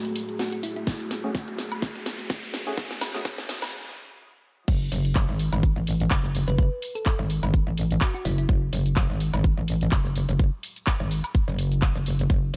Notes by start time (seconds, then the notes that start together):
Already playing: A3 F#4 G#4, riser
0.05 closed hi-hat
0.16 open hi-hat
0.29 closed hi-hat
0.39 F#4, snare, closed hi-hat
0.52 F#4, closed hi-hat
0.63 E4, open hi-hat
0.76 E4, closed hi-hat
0.87 kick, snare, closed hi-hat
1.00 closed hi-hat
1.11 snare, open hi-hat
1.24 A3 C#4 F#4 G#4
1.35 kick, snare, closed hi-hat
1.48 closed hi-hat
1.59 snare, open hi-hat
1.72 closed hi-hat, high woodblock
1.82 kick, snare, closed hi-hat
1.95 closed hi-hat
2.06 snare, open hi-hat
2.19 closed hi-hat
2.30 kick, snare, closed hi-hat
2.43 closed hi-hat
2.54 snare, open hi-hat
2.67 A3 C#4 F#4 G#4, closed hi-hat
2.78 kick, snare, closed hi-hat
2.91 snare, closed hi-hat
3.01 snare, open hi-hat, high woodblock
3.14 A3 C#4 F#4 G#4, snare
3.25 kick, snare, closed hi-hat
3.38 snare, closed hi-hat
3.49 snare, open hi-hat
3.62 snare, closed hi-hat, high woodblock
4.68 F#1 A3 F#4, kick, closed hi-hat, crash, shaker
4.92 F#1, open hi-hat, shaker
5.05 closed hi-hat, shaker
5.15 kick, clap, closed hi-hat, shaker
5.29 G#1
5.39 open hi-hat, shaker
5.53 G#1, closed hi-hat, high woodblock, shaker
5.63 kick, closed hi-hat, shaker
5.76 A1
5.87 open hi-hat, shaker
6.00 closed hi-hat, shaker
6.11 kick, clap, closed hi-hat, shaker
6.25 shaker
6.35 open hi-hat, shaker
6.48 F#1 B4, closed hi-hat, shaker
6.58 B4, kick, closed hi-hat, shaker
6.82 open hi-hat, shaker
6.95 A4, closed hi-hat, shaker
7.06 A4, kick, clap, closed hi-hat, shaker
7.19 G#1
7.30 open hi-hat, shaker
7.43 G#1, closed hi-hat, high woodblock, shaker
7.54 kick, closed hi-hat, shaker
7.67 A1
7.78 open hi-hat, shaker
7.91 closed hi-hat, shaker
8.01 F#4, kick, clap, closed hi-hat, shaker
8.14 F#4, shaker
8.25 F#1 E4, open hi-hat, shaker
8.38 E4, closed hi-hat, shaker
8.49 F#1, kick, closed hi-hat, shaker
8.73 F#1, open hi-hat, shaker
8.86 closed hi-hat, shaker
8.96 kick, clap, closed hi-hat, shaker
9.10 G#1
9.20 open hi-hat, shaker
9.33 G#1, closed hi-hat, high woodblock, shaker
9.44 kick, closed hi-hat, shaker
9.57 A1
9.68 open hi-hat, shaker
9.81 closed hi-hat, shaker
9.92 F#1, kick, clap, closed hi-hat, shaker
10.05 shaker
10.16 open hi-hat, shaker
10.29 F#1, closed hi-hat, shaker
10.39 kick, closed hi-hat, shaker
10.63 open hi-hat, shaker
10.76 closed hi-hat, shaker
10.87 kick, clap, closed hi-hat, shaker
11.00 G#1
11.11 open hi-hat, shaker
11.24 closed hi-hat, high woodblock, shaker
11.35 kick, closed hi-hat, shaker
11.48 F#1, shaker
11.59 open hi-hat, shaker
11.72 closed hi-hat, shaker
11.82 kick, clap, closed hi-hat, shaker
11.95 F#1, shaker
12.06 open hi-hat, shaker
12.19 closed hi-hat, shaker
12.30 kick, closed hi-hat, shaker